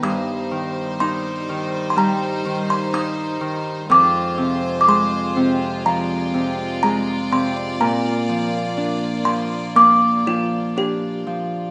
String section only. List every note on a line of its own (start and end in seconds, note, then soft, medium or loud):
0.03 3.86 G3 medium
0.03 3.87 D#4 medium
0.03 3.86 C5 medium
3.91 7.77 G#3 medium
3.91 11.71 F4 medium
3.91 5.82 C5 medium
5.85 11.71 D5 medium
7.81 11.71 A#3 medium